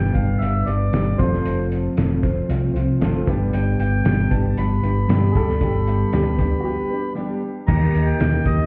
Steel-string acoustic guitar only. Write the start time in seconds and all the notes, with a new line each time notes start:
Already playing: G3 D4 G4 B4
0.13 D4 G4 B4
0.39 G3 D4 G4 B4
0.66 D4 G4 B4
0.93 G3 D4 G4 B4
1.18 F3 A3 C4 F4 C5
1.96 A3 C4 F4 C5
2.23 C4 F4 C5
2.49 A3 C4 F4 C5
2.74 C4 F4 C5
3.00 A3 C4 F4 C5
3.27 G3 D4 G4 B4
4.04 G3 D4 G4 B4
4.31 D4 G4 B4
4.57 G3 D4 G4 B4
4.83 D4 G4 B4
5.08 G3 D4 G4 B4
5.60 G3 D4 G4 B4
6.12 G3 D4 G4 B4
6.38 D4 G4 B4
6.64 G3 D4 G4 B4
6.90 D4 G4 B4
7.16 G3 D4 G4 B4
7.68 D#3 G3 D#4 G4 A#4
7.93 D#4 G4 A#4
8.44 D#4 G4 A#4